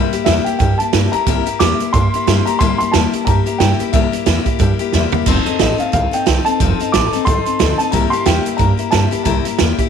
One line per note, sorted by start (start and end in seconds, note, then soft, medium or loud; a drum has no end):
0.00 0.13 C3 loud
0.00 0.13 G3 loud
0.00 0.13 A#3 loud
0.00 0.13 E4 medium
0.00 0.12 G4 medium
0.13 0.26 A#3 soft
0.13 0.27 E4 soft
0.13 0.27 G4 medium
0.13 muted upright bass stroke medium
0.13 closed hi-hat medium
0.25 0.41 E2 loud
0.25 0.46 C3 medium
0.25 0.46 G3 medium
0.25 0.47 A#3 medium
0.25 0.46 E4 medium
0.25 0.45 G4 medium
0.25 0.46 E5 medium
0.25 snare loud
0.25 closed hi-hat medium
0.44 0.60 E4 soft
0.44 0.60 G4 medium
0.44 0.57 G5 medium
0.44 muted upright bass stroke medium
0.44 closed hi-hat medium
0.49 0.59 A#3 soft
0.59 0.74 G2 medium
0.59 0.79 G3 medium
0.59 0.80 A#3 medium
0.59 0.80 E4 medium
0.59 0.78 G4 medium
0.59 0.80 G5 medium
0.59 kick loud
0.59 closed hi-hat medium
0.78 0.93 A#3 soft
0.78 0.93 E4 soft
0.78 0.93 G4 medium
0.78 1.13 A5 medium
0.78 muted upright bass stroke medium
0.78 closed hi-hat medium
0.93 1.08 G2 medium
0.93 1.13 C3 medium
0.93 1.13 G3 medium
0.93 1.13 A#3 medium
0.93 1.13 E4 medium
0.93 1.12 G4 medium
0.93 snare loud
0.93 closed hi-hat loud
1.12 1.27 A#3 soft
1.12 1.27 E4 medium
1.12 1.27 G4 medium
1.12 1.56 A#5 loud
1.12 muted upright bass stroke medium
1.12 closed hi-hat medium
1.26 1.41 C2 medium
1.26 1.47 C3 medium
1.26 1.47 G3 medium
1.26 1.47 A#3 loud
1.26 1.46 E4 medium
1.26 1.45 G4 loud
1.26 kick loud
1.26 closed hi-hat medium
1.46 1.60 A#3 soft
1.46 1.60 E4 medium
1.46 1.60 G4 medium
1.46 closed hi-hat medium
1.59 1.74 E2 loud
1.59 1.80 C3 medium
1.59 1.80 G3 medium
1.59 1.80 A#3 medium
1.59 1.80 E4 medium
1.59 1.78 G4 medium
1.59 1.91 D6 medium
1.59 snare loud
1.59 closed hi-hat medium
1.79 1.93 A#3 soft
1.79 1.94 E4 soft
1.79 1.93 G4 soft
1.79 muted upright bass stroke medium
1.79 closed hi-hat medium
1.93 2.08 G2 medium
1.93 2.13 G3 medium
1.93 2.14 A#3 medium
1.93 2.14 E4 medium
1.93 2.13 G4 medium
1.93 2.48 C6 loud
1.93 kick loud
1.93 closed hi-hat medium
2.13 2.27 A#3 soft
2.13 2.27 E4 medium
2.13 2.27 G4 medium
2.13 muted upright bass stroke medium
2.13 closed hi-hat medium
2.27 2.41 G2 medium
2.27 2.47 C3 medium
2.27 2.47 G3 medium
2.27 2.47 A#3 medium
2.27 2.46 E4 medium
2.27 2.45 G4 medium
2.27 snare loud
2.27 closed hi-hat medium
2.46 2.60 A#3 soft
2.46 2.61 E4 medium
2.46 2.60 G4 medium
2.46 2.60 A#5 loud
2.46 muted upright bass stroke medium
2.46 closed hi-hat medium
2.59 2.75 C2 medium
2.59 2.80 C3 medium
2.59 2.80 G3 medium
2.59 2.80 A#3 medium
2.59 2.80 E4 loud
2.59 2.79 G4 medium
2.59 2.77 C6 loud
2.59 kick loud
2.59 closed hi-hat medium
2.78 2.93 E4 medium
2.78 2.94 G4 soft
2.78 2.93 C6 loud
2.78 muted upright bass stroke medium
2.78 closed hi-hat medium
2.83 2.93 A#3 soft
2.92 3.08 E2 medium
2.92 3.13 C3 medium
2.92 3.13 G3 loud
2.92 3.14 A#3 medium
2.92 3.13 E4 medium
2.92 3.27 A5 loud
2.92 snare loud
2.92 closed hi-hat medium
2.96 3.12 G4 medium
3.13 3.26 A#3 medium
3.13 3.28 E4 soft
3.13 3.27 G4 soft
3.13 muted upright bass stroke medium
3.13 closed hi-hat medium
3.25 3.41 G2 medium
3.25 3.46 G3 medium
3.25 3.47 A#3 medium
3.25 3.46 E4 medium
3.25 3.60 A#5 medium
3.25 kick loud
3.25 closed hi-hat medium
3.29 3.45 G4 medium
3.46 3.60 A#3 soft
3.46 3.60 E4 soft
3.46 3.60 G4 medium
3.46 muted upright bass stroke medium
3.46 closed hi-hat medium
3.58 3.74 G2 medium
3.58 3.80 C3 medium
3.58 3.80 G3 medium
3.58 3.80 A#3 medium
3.58 3.79 E4 medium
3.58 3.78 G4 medium
3.58 3.94 G5 medium
3.58 snare loud
3.58 closed hi-hat medium
3.79 3.93 A#3 soft
3.79 3.93 E4 medium
3.79 3.93 G4 medium
3.79 muted upright bass stroke medium
3.79 closed hi-hat medium
3.92 4.08 C2 medium
3.92 4.13 C3 medium
3.92 4.13 G3 loud
3.92 4.13 A#3 medium
3.92 4.11 E4 medium
3.92 4.11 G4 medium
3.92 4.24 E5 medium
3.92 kick loud
3.92 closed hi-hat medium
4.12 4.26 A#3 soft
4.12 4.26 E4 soft
4.12 4.26 G4 medium
4.12 closed hi-hat medium
4.26 4.41 E2 medium
4.26 4.46 C3 medium
4.26 4.46 G3 medium
4.26 4.46 A#3 medium
4.26 4.46 E4 medium
4.26 4.44 G4 medium
4.26 snare loud
4.26 closed hi-hat medium
4.46 4.59 A#3 soft
4.46 4.59 E4 medium
4.46 4.60 G4 medium
4.46 kick medium
4.46 closed hi-hat medium
4.59 4.74 G2 medium
4.59 4.79 G3 medium
4.59 4.80 A#3 medium
4.59 4.79 E4 medium
4.59 4.78 G4 medium
4.59 kick loud
4.59 closed hi-hat medium
4.79 4.93 A#3 soft
4.79 4.93 E4 medium
4.79 4.93 G4 medium
4.79 muted upright bass stroke medium
4.79 closed hi-hat medium
4.93 5.08 E2 medium
4.93 5.13 C3 medium
4.93 5.13 G3 medium
4.93 5.13 A#3 medium
4.93 5.12 E4 loud
4.93 5.11 G4 medium
4.93 snare medium
5.12 5.27 A#3 medium
5.12 5.27 E4 medium
5.12 5.26 G4 medium
5.12 muted upright bass stroke medium
5.12 floor tom medium
5.26 5.41 F1 medium
5.26 5.46 F3 loud
5.26 5.47 C4 loud
5.26 5.46 D#4 loud
5.26 5.45 A4 loud
5.26 kick loud
5.26 closed hi-hat medium
5.26 crash medium
5.46 5.58 C4 soft
5.46 5.59 D#4 medium
5.46 5.60 A4 medium
5.46 muted upright bass stroke medium
5.46 closed hi-hat medium
5.59 5.74 A1 medium
5.59 5.79 F3 medium
5.59 5.79 C4 medium
5.59 5.78 D#4 medium
5.59 5.77 A4 loud
5.59 5.80 D#5 medium
5.59 snare loud
5.59 closed hi-hat medium
5.78 5.92 C4 soft
5.78 5.93 D#4 soft
5.78 5.93 A4 medium
5.78 5.92 F5 medium
5.78 muted upright bass stroke medium
5.78 closed hi-hat medium
5.92 6.07 C2 medium
5.92 6.12 F3 medium
5.92 6.13 C4 medium
5.92 6.11 D#4 medium
5.92 6.10 A4 medium
5.92 6.14 F5 loud
5.92 kick loud
5.92 closed hi-hat medium
6.11 6.25 C4 soft
6.11 6.26 D#4 soft
6.11 6.26 A4 medium
6.11 6.44 G5 medium
6.11 closed hi-hat medium
6.26 6.41 C2 medium
6.26 6.46 F3 medium
6.26 6.46 C4 medium
6.26 6.45 D#4 medium
6.26 6.45 A4 medium
6.26 snare loud
6.26 closed hi-hat medium
6.45 6.60 C4 medium
6.45 6.60 D#4 medium
6.45 6.60 A4 medium
6.45 6.94 A5 loud
6.45 closed hi-hat medium
6.60 6.74 F1 medium
6.60 6.80 F3 medium
6.60 6.80 C4 medium
6.60 6.80 D#4 medium
6.60 6.78 A4 medium
6.60 kick loud
6.60 closed hi-hat medium
6.80 6.93 C4 soft
6.80 6.94 D#4 soft
6.80 6.93 A4 medium
6.80 muted upright bass stroke medium
6.80 closed hi-hat medium
6.92 7.08 A1 medium
6.92 7.13 F3 medium
6.92 7.13 C4 medium
6.92 7.12 D#4 medium
6.92 7.11 A4 medium
6.92 7.24 D6 medium
6.92 snare loud
6.92 closed hi-hat medium
7.13 7.25 C4 soft
7.13 7.26 D#4 soft
7.13 7.27 A4 medium
7.13 muted upright bass stroke medium
7.13 closed hi-hat medium
7.25 7.41 C2 medium
7.25 7.46 F3 medium
7.25 7.46 C4 medium
7.25 7.45 D#4 medium
7.25 7.44 A4 medium
7.25 7.75 C6 loud
7.25 kick loud
7.25 closed hi-hat medium
7.45 7.59 C4 soft
7.45 7.59 D#4 soft
7.45 7.60 A4 soft
7.45 muted upright bass stroke medium
7.45 closed hi-hat medium
7.59 7.75 D2 medium
7.59 7.79 F3 medium
7.59 7.80 C4 medium
7.59 7.80 D#4 medium
7.59 7.78 A4 medium
7.59 snare loud
7.59 closed hi-hat medium
7.78 7.93 C4 medium
7.78 7.93 D#4 medium
7.78 7.93 A4 medium
7.78 7.93 A5 medium
7.78 closed hi-hat medium
7.91 8.07 C2 medium
7.91 8.12 C3 medium
7.91 8.13 G3 medium
7.91 8.13 A#3 medium
7.91 8.12 E4 medium
7.91 8.11 G4 medium
7.91 8.12 A#5 loud
7.91 kick loud
7.91 closed hi-hat medium
8.10 8.26 E4 medium
8.10 8.26 G4 medium
8.10 8.24 C6 loud
8.10 closed hi-hat medium
8.14 8.26 A#3 soft
8.26 8.40 E2 loud
8.26 8.46 C3 medium
8.26 8.46 G3 medium
8.26 8.46 A#3 medium
8.26 8.46 E4 medium
8.26 8.44 G4 medium
8.26 8.61 G5 medium
8.26 snare loud
8.26 closed hi-hat medium
8.45 8.58 A#3 medium
8.45 8.58 E4 medium
8.45 8.59 G4 medium
8.45 muted upright bass stroke medium
8.45 closed hi-hat medium
8.57 8.74 G2 medium
8.57 8.78 G3 medium
8.57 8.78 A#3 medium
8.57 8.78 E4 medium
8.57 8.76 G4 medium
8.57 8.93 A#5 loud
8.57 kick loud
8.57 closed hi-hat medium
8.77 8.91 A#3 soft
8.77 8.92 E4 medium
8.77 8.92 G4 medium
8.77 muted upright bass stroke medium
8.77 closed hi-hat medium
8.91 9.07 G2 medium
8.91 9.12 C3 medium
8.91 9.12 G3 medium
8.91 9.12 A#3 medium
8.91 9.11 E4 medium
8.91 9.10 G4 medium
8.91 9.26 A5 medium
8.91 snare loud
8.91 closed hi-hat medium
9.11 9.25 A#3 medium
9.11 9.25 E4 medium
9.11 9.26 G4 medium
9.11 muted upright bass stroke medium
9.11 closed hi-hat medium
9.23 9.40 C2 medium
9.23 9.45 C3 medium
9.23 9.45 G3 medium
9.23 9.46 A#3 medium
9.23 9.46 E4 medium
9.23 9.45 G4 loud
9.23 9.56 A#5 medium
9.23 kick loud
9.23 closed hi-hat medium
9.45 9.58 A#3 soft
9.45 9.58 E4 medium
9.45 9.58 G4 soft
9.45 muted upright bass stroke medium
9.45 closed hi-hat medium
9.58 9.74 E2 medium
9.58 9.78 C3 medium
9.58 9.79 G3 medium
9.58 9.79 A#3 medium
9.58 9.79 E4 medium
9.58 9.78 G4 medium
9.58 snare loud
9.58 closed hi-hat medium
9.79 9.89 A#3 soft
9.79 9.89 E4 medium
9.79 9.89 G4 medium
9.79 muted upright bass stroke medium
9.79 kick medium
9.79 closed hi-hat medium